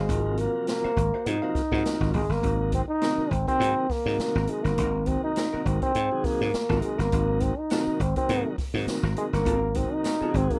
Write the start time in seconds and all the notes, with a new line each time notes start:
Already playing: G#3 F#4
0.09 G#1 C3 F3 F#3 A#3, kick, closed hi-hat
0.37 A#3, closed hi-hat
0.67 A#3, snare, closed hi-hat
0.84 F#4 C5 F5, muted slap bass stroke
0.97 G#1, kick, closed hi-hat
1.14 F#4 C5 F5
1.26 G#2 C3 F3 F#3 G#3 D#4, closed hi-hat
1.42 C3 F3 F#3 A#3 F#4 C5 F5
1.55 muted slap bass stroke, kick, snare, closed hi-hat
1.72 G#2 C3 F3 F#3 A#3 F#4 C5 F#5, kick, snare
1.85 snare, closed hi-hat
2.01 G#1, kick, snare
2.14 G#1 G#3, kick, open hi-hat
2.29 G1 A#3, snare
2.43 G#1 C3 D#3 F#3 A#3, kick, closed hi-hat
2.72 C4, kick, closed hi-hat
2.88 D#4
3.01 C3 D#3 F#3 A#3 C4 F#4 A#4, snare, closed hi-hat
3.18 muted slap bass stroke
3.30 G#1 C4, kick, closed hi-hat
3.47 C3 D#3 F#3 A#3 C4, kick, closed hi-hat
3.60 G#2 C4 F#4 A#4, closed hi-hat
3.90 A#3, muted slap bass stroke, kick, snare, open hi-hat
4.06 G#2 C3 D#3 F#3 A#3, snare
4.18 muted slap bass stroke, snare, closed hi-hat
4.35 G#1 C4 F#4 A#4, snare
4.47 C3 D#3 F#3 G#3 A#3, closed hi-hat
4.64 G1 A#3 C4 F#4 A#4, snare, closed hi-hat
4.78 G#1 C4 F#4 A#4, kick, closed hi-hat
5.06 C3 D#3 F#3 A#3 C4, kick, closed hi-hat
5.23 D#4
5.36 C4 F#4 A#4, snare, closed hi-hat
5.53 C3 D#3 F#3 A#3 C4 F#4 A#4, muted slap bass stroke
5.66 G#1 C4, kick, closed hi-hat
5.82 C4, kick, closed hi-hat
5.95 G#2, closed hi-hat
6.12 C3 D#3 F#3 G#3
6.24 A#3, muted slap bass stroke, kick, snare, open hi-hat
6.41 G#2, snare
6.54 muted slap bass stroke, snare, closed hi-hat
6.69 G#1 C3 D#3 F#3 A#3 C4 F#4 A#4, kick, snare
6.82 G#3, closed hi-hat
6.98 G1 A#3 C4 F#4 A#4, snare, closed hi-hat
7.12 G#1 C3 D#3 F#3 A#3, kick, closed hi-hat
7.40 C4, kick, closed hi-hat
7.58 D#4
7.70 C3 D#3 F#3 A#3 C4 F#4 A#4, snare, closed hi-hat, tambourine
7.87 muted slap bass stroke
8.00 G#1 C4, kick, closed hi-hat
8.16 C3 D#3 F#3 A#3 C4, kick, closed hi-hat
8.29 G#2 C4 F#4 A#4, closed hi-hat
8.58 muted slap bass stroke, kick, snare, open hi-hat
8.74 G#2 C3 D#3 F#3 A#3, snare
8.87 muted slap bass stroke, snare, closed hi-hat, tambourine
9.03 G#1 C4 F#4 A#4, snare
9.16 C3 D#3 F#3 G#3 A#3, closed hi-hat
9.33 G1 A#3 C4 F#4 A#4, snare, closed hi-hat
9.45 G#1 C4 F#4 A#4, kick, closed hi-hat
9.74 C3 D#3 F#3 A#3 C4, kick, closed hi-hat
9.93 D#4
10.04 C4 F#4 A#4, snare, closed hi-hat, tambourine
10.21 C3 D#3 F#3 G#3 C4 F#4 A#4, muted slap bass stroke
10.34 G#1 C4, kick, closed hi-hat
10.50 A#3, kick, closed hi-hat